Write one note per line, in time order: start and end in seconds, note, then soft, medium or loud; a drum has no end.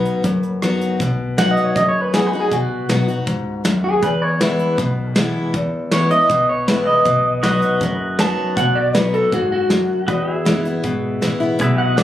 0.00 0.21 B2 medium
0.00 0.22 F#3 soft
0.00 0.23 B3 medium
0.00 0.23 D#4 medium
0.00 0.23 F#4 medium
0.00 0.59 B4 medium
0.05 closed hi-hat soft
0.24 0.78 F#1 medium
0.24 0.96 F#2 medium
0.24 kick loud
0.24 closed hi-hat medium
0.43 closed hi-hat soft
0.62 0.98 F#3 medium
0.62 0.99 B3 medium
0.62 0.99 D#4 medium
0.62 0.99 F#4 medium
0.62 cross-stick medium
0.62 closed hi-hat medium
0.81 closed hi-hat medium
1.00 1.54 B1 medium
1.00 1.73 B2 medium
1.00 kick loud
1.00 closed hi-hat medium
1.38 1.74 F#3 medium
1.38 1.75 B3 medium
1.38 1.75 D#4 medium
1.38 1.76 F#4 medium
1.38 1.51 F#5 medium
1.38 snare loud
1.38 closed hi-hat medium
1.51 1.64 D#5 medium
1.57 closed hi-hat medium
1.64 1.76 C#5 medium
1.76 2.29 F#1 medium
1.76 2.48 F#2 medium
1.76 1.88 D#5 medium
1.76 kick loud
1.76 closed hi-hat medium
1.89 2.01 C#5 medium
2.01 2.14 B4 medium
2.14 2.32 F#3 medium
2.14 2.33 B3 medium
2.14 2.33 D#4 medium
2.14 2.32 F#4 medium
2.14 2.27 G#4 medium
2.14 snare loud
2.14 closed hi-hat medium
2.27 2.39 B4 medium
2.33 2.52 D#4 soft
2.33 2.51 F#4 medium
2.40 2.53 G#4 medium
2.51 2.78 B1 medium
2.51 3.24 B2 medium
2.51 3.63 F#4 medium
2.51 kick loud
2.51 closed hi-hat medium
2.89 3.22 B1 medium
2.89 3.07 F#3 medium
2.89 3.08 B3 medium
2.89 3.08 D#4 medium
2.89 3.07 F#4 medium
2.89 snare loud
2.89 closed hi-hat medium
3.08 3.27 D#4 soft
3.08 3.27 F#4 soft
3.08 closed hi-hat medium
3.27 3.60 C#2 medium
3.27 3.63 G#2 medium
3.27 kick loud
3.27 closed hi-hat medium
3.65 3.97 D#2 medium
3.65 4.01 F#2 medium
3.65 snare loud
3.65 closed hi-hat medium
3.84 4.03 G#4 medium
4.02 4.56 E2 medium
4.02 4.75 E2 medium
4.02 4.22 B4 medium
4.02 kick loud
4.02 closed hi-hat medium
4.22 4.41 C#5 medium
4.41 4.77 E3 medium
4.41 4.77 G#3 medium
4.41 4.78 B3 medium
4.41 4.78 E4 medium
4.41 5.14 B4 medium
4.41 snare loud
4.41 closed hi-hat medium
4.59 closed hi-hat medium
4.78 5.32 B1 medium
4.78 5.51 B2 medium
4.78 kick loud
4.78 closed hi-hat medium
5.16 5.53 E3 medium
5.16 5.53 G#3 medium
5.16 5.53 B3 medium
5.16 5.54 E4 medium
5.16 snare loud
5.16 closed hi-hat medium
5.54 6.07 E2 medium
5.54 6.26 E2 medium
5.54 kick loud
5.54 closed hi-hat medium
5.91 6.10 E3 medium
5.91 6.11 G#3 medium
5.91 6.11 B3 medium
5.91 6.10 E4 medium
5.91 6.10 C#5 medium
5.91 snare medium
5.91 closed hi-hat medium
6.11 6.31 B3 soft
6.11 6.29 E4 medium
6.11 6.48 D#5 medium
6.11 closed hi-hat medium
6.29 6.83 B1 medium
6.29 7.02 B2 medium
6.29 kick loud
6.29 closed hi-hat medium
6.49 6.68 C#5 medium
6.68 7.04 E3 medium
6.68 7.04 G#3 medium
6.68 7.05 B3 medium
6.68 7.05 E4 medium
6.68 6.86 B4 medium
6.68 snare loud
6.68 closed hi-hat medium
6.87 7.97 D#5 medium
7.05 7.59 B1 medium
7.05 7.78 B2 medium
7.05 kick loud
7.05 closed hi-hat medium
7.43 7.80 F#3 medium
7.43 7.81 B3 medium
7.43 7.81 D#4 medium
7.43 10.06 F#4 medium
7.43 10.07 B4 medium
7.43 10.07 D#5 medium
7.43 snare loud
7.43 closed hi-hat medium
7.47 7.81 F#4 medium
7.62 closed hi-hat medium
7.81 8.35 F#1 medium
7.81 8.54 F#2 medium
7.81 kick loud
7.81 closed hi-hat medium
8.19 8.56 F#3 medium
8.19 8.56 B3 medium
8.19 8.57 D#4 medium
8.19 8.57 F#4 medium
8.19 8.57 A5 medium
8.19 snare loud
8.19 closed hi-hat medium
8.57 9.10 B1 medium
8.57 9.30 B2 medium
8.57 8.76 F#5 medium
8.57 kick loud
8.57 closed hi-hat medium
8.75 8.94 D5 medium
8.95 9.31 F#3 medium
8.95 9.32 B3 medium
8.95 9.32 D#4 medium
8.95 9.32 F#4 medium
8.95 9.13 B4 medium
8.95 snare medium
8.95 closed hi-hat medium
9.14 9.32 A4 medium
9.14 closed hi-hat medium
9.32 9.86 F#1 medium
9.32 9.69 G#2 medium
9.32 9.51 F#4 medium
9.32 kick loud
9.32 closed hi-hat medium
9.52 10.62 F#4 medium
9.70 10.07 F#2 medium
9.70 snare loud
9.70 closed hi-hat soft
10.08 10.35 E2 medium
10.08 10.81 E2 medium
10.08 10.33 F#4 medium
10.08 11.59 B4 medium
10.08 10.30 D#5 medium
10.08 kick loud
10.08 closed hi-hat medium
10.30 11.58 G#4 medium
10.30 11.59 E5 medium
10.45 10.79 F#1 medium
10.45 10.64 E3 medium
10.45 10.65 G#3 medium
10.45 10.65 B3 medium
10.45 10.64 E4 medium
10.45 snare loud
10.45 closed hi-hat medium
10.65 10.85 B3 soft
10.65 10.84 E4 medium
10.65 closed hi-hat medium
10.84 11.17 G#1 medium
10.84 11.56 B2 medium
10.84 kick loud
10.84 closed hi-hat medium
11.22 11.55 A1 medium
11.22 11.40 E3 medium
11.22 11.41 G#3 medium
11.22 11.41 B3 medium
11.22 11.39 E4 medium
11.22 snare medium
11.22 closed hi-hat medium
11.40 11.60 B3 soft
11.40 11.59 E4 medium
11.59 12.03 B1 medium
11.59 12.03 B2 medium
11.59 11.86 G#4 medium
11.59 12.03 B4 medium
11.59 kick loud
11.59 closed hi-hat medium
11.64 11.84 E5 medium
11.78 11.97 F#5 medium
11.84 12.03 F#4 medium
11.84 12.03 D#5 medium
11.97 12.03 F#3 medium
11.97 12.03 B3 medium
11.97 12.03 D#4 medium
11.97 12.03 F#4 medium
11.97 12.03 D5 medium
11.97 snare loud
11.97 closed hi-hat medium